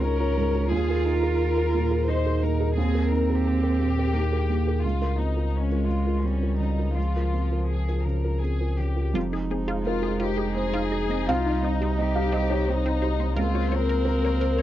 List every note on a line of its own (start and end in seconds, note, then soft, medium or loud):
0.00 0.73 C#2 medium
0.00 0.74 C#2 medium
0.00 0.37 G#2 soft
0.00 0.69 C#4 medium
0.00 0.03 D#4 soft
0.00 0.30 D#4 soft
0.00 0.20 F4 soft
0.00 0.70 A#4 medium
0.00 0.20 C#5 soft
0.20 0.35 F4 soft
0.20 0.35 C#5 soft
0.37 0.65 G#2 soft
0.54 0.70 F4 soft
0.54 0.70 C#5 medium
0.70 0.88 D#2 medium
0.70 4.85 D#2 medium
0.70 2.10 F4 loud
0.70 1.06 G#4 medium
0.89 1.04 G#4 soft
0.89 1.05 A#4 soft
1.05 1.33 D#4 soft
1.05 2.08 A#4 medium
1.23 1.54 G#4 soft
1.23 1.53 A#4 soft
1.57 1.73 G#4 soft
1.57 1.73 A#4 soft
1.75 2.02 A#2 soft
1.90 2.06 G#4 soft
1.90 2.06 A#4 soft
2.07 2.36 D#4 soft
2.07 2.76 D#4 medium
2.07 2.42 C5 medium
2.26 2.41 G#4 soft
2.26 2.41 A#4 soft
2.41 2.70 A#2 soft
2.41 2.76 A#4 medium
2.60 2.75 G#4 soft
2.60 2.76 A#4 soft
2.76 2.94 D#2 medium
2.76 4.15 C4 loud
2.76 3.10 G#4 medium
2.94 3.10 G#4 soft
2.94 3.10 A#4 soft
3.10 3.39 D#4 soft
3.10 3.45 A#4 medium
3.29 3.60 G#4 soft
3.29 3.60 A#4 soft
3.44 4.83 G4 medium
3.63 3.78 G#4 soft
3.63 3.78 A#4 soft
3.81 4.08 A#2 soft
3.99 4.14 G#4 soft
3.99 4.14 A#4 soft
4.13 4.48 A#3 medium
4.13 4.42 D#4 soft
4.32 4.47 G#4 soft
4.32 4.48 A#4 soft
4.50 4.77 A#2 soft
4.67 4.82 G#4 soft
4.67 4.83 A#4 soft
4.83 9.14 C#2 medium
4.83 5.01 C#2 soft
4.83 5.18 F4 medium
5.02 5.17 F4 soft
5.02 5.17 A#4 soft
5.18 5.46 C4 soft
5.18 5.53 D#4 soft
5.36 5.68 F4 soft
5.36 5.68 A#4 soft
5.52 6.25 G#3 medium
5.52 5.89 C#4 soft
5.71 5.87 F4 soft
5.71 5.87 A#4 soft
5.88 6.17 C#3 soft
5.88 6.24 F4 soft
6.07 6.23 F4 soft
6.07 6.23 A#4 soft
6.23 6.96 G3 medium
6.23 6.53 C4 soft
6.23 6.60 C#4 soft
6.43 6.59 F4 soft
6.43 6.59 A#4 soft
6.60 6.89 C#3 soft
6.60 6.96 D#4 soft
6.78 6.95 F4 soft
6.78 6.95 A#4 soft
6.95 7.14 C#2 soft
6.95 8.75 F3 medium
6.95 7.62 F4 soft
7.16 7.32 F4 soft
7.16 7.32 A#4 soft
7.34 7.63 C4 soft
7.51 7.84 F4 soft
7.51 7.85 A#4 soft
7.68 8.03 G#4 soft
7.89 8.05 F4 soft
7.89 8.05 A#4 soft
8.06 8.35 C#3 soft
8.06 8.43 A#4 soft
8.24 8.41 F4 soft
8.24 8.41 A#4 soft
8.43 8.72 C4 soft
8.43 8.79 G#4 soft
8.61 8.77 F4 soft
8.61 8.77 A#4 soft
8.79 9.08 C#3 soft
8.79 9.15 G4 soft
8.96 9.13 F4 soft
8.96 9.13 A#4 soft
9.14 11.30 F1 medium
9.14 11.24 F2 medium
9.14 11.25 G#3 medium
9.14 13.40 D#4 medium
9.14 9.26 F4 medium
9.32 9.61 D#4 soft
9.32 9.44 G#4 medium
9.51 9.79 C4 soft
9.51 9.62 G#4 medium
9.67 9.79 F4 medium
9.67 9.96 G#4 soft
9.85 10.13 C4 soft
9.85 10.18 F4 medium
9.85 10.52 A#4 medium
10.02 10.30 G#4 soft
10.02 10.13 G#4 medium
10.20 10.30 F4 medium
10.20 10.56 G4 medium
10.20 10.48 C5 soft
10.37 10.66 G#4 soft
10.37 10.48 G#4 medium
10.55 10.84 C4 soft
10.55 11.28 G#4 medium
10.55 11.25 C5 medium
10.73 11.03 D#4 soft
10.73 10.85 F4 medium
10.92 11.21 G#4 soft
10.92 11.03 D#5 medium
11.09 11.28 C4 soft
11.09 11.22 D#5 medium
11.29 13.33 C2 medium
11.29 13.39 C2 medium
11.29 13.33 G3 medium
11.29 11.40 C4 medium
11.29 11.65 F4 medium
11.29 11.94 F5 loud
11.46 11.74 D#4 soft
11.46 11.57 D#4 medium
11.62 11.91 C4 soft
11.62 11.75 D#4 medium
11.62 11.99 D#4 medium
11.81 11.92 C4 medium
11.81 12.08 G4 soft
11.98 12.26 C4 soft
11.98 12.69 G4 medium
11.98 12.14 D#5 medium
12.15 12.27 D#4 medium
12.15 12.43 G4 soft
12.15 12.32 F5 medium
12.32 12.43 C4 medium
12.32 12.61 C5 soft
12.32 12.49 D#5 medium
12.50 12.61 D#4 medium
12.50 12.78 G4 medium
12.50 12.66 C#5 medium
12.67 12.96 C4 soft
12.67 13.37 D#4 medium
12.67 13.32 C5 medium
12.85 12.96 C4 medium
12.85 13.13 D#4 soft
13.02 13.30 G4 soft
13.02 13.13 C5 medium
13.19 13.37 C4 soft
13.19 13.30 C5 medium
13.36 14.62 C#2 medium
13.36 14.62 A#3 medium
13.36 14.62 C4 medium
13.36 13.71 F4 medium
13.36 13.47 A#4 medium
13.54 13.82 F4 medium
13.54 13.65 C#5 medium
13.71 13.99 C4 soft
13.71 14.62 A#4 medium
13.71 13.82 C#5 medium
13.89 14.04 A#4 medium
13.89 14.00 A#4 medium
14.05 14.34 C4 medium
14.05 14.22 A#4 medium
14.24 14.50 A#4 medium
14.24 14.34 C#5 medium
14.41 14.51 A#4 medium
14.41 14.62 C5 medium
14.57 14.62 A#4 medium
14.57 14.62 C#5 medium